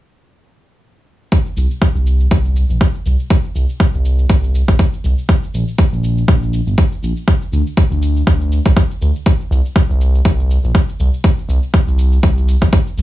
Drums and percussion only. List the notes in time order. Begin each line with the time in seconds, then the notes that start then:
1.32 kick, shaker
1.46 shaker
1.57 shaker
1.71 shaker
1.82 kick, shaker
1.96 shaker
2.07 shaker
2.20 shaker
2.31 kick, shaker
2.45 shaker
2.56 shaker
2.70 shaker
2.81 kick, shaker
2.95 shaker
3.06 shaker
3.20 shaker
3.30 kick, shaker
3.45 shaker
3.55 shaker
3.69 shaker
3.80 kick, shaker
3.94 shaker
4.05 shaker
4.19 shaker
4.30 kick, shaker
4.44 shaker
4.55 shaker
4.68 kick, shaker
4.79 kick, shaker
4.93 shaker
5.04 shaker
5.18 shaker
5.29 kick, shaker
5.43 shaker
5.54 shaker
5.68 shaker
5.78 kick, shaker
5.93 shaker
6.04 shaker
6.18 shaker
6.28 kick, shaker
6.43 shaker
6.53 shaker
6.67 shaker
6.78 kick, shaker
6.92 shaker
7.03 shaker
7.17 shaker
7.28 kick, shaker
7.42 shaker
7.53 shaker
7.67 shaker
7.77 kick, shaker
7.92 shaker
8.02 shaker
8.17 shaker
8.27 kick, shaker
8.41 shaker
8.52 shaker
8.66 kick, shaker
8.77 kick, shaker
8.91 shaker
9.02 shaker
9.16 shaker
9.26 kick, shaker
9.41 shaker
9.52 shaker
9.66 shaker
9.76 kick, shaker
9.90 shaker
10.01 shaker
10.15 shaker
10.25 kick, shaker
10.40 shaker
10.50 shaker
10.64 shaker
10.75 kick, shaker
10.89 shaker
11.00 shaker
11.14 shaker
11.24 kick, shaker
11.38 shaker
11.49 shaker
11.63 shaker
11.74 kick, shaker
11.88 shaker
11.99 shaker
12.12 shaker
12.23 kick, shaker
12.38 shaker
12.48 shaker
12.62 kick, shaker
12.73 kick, shaker
12.87 shaker
12.98 shaker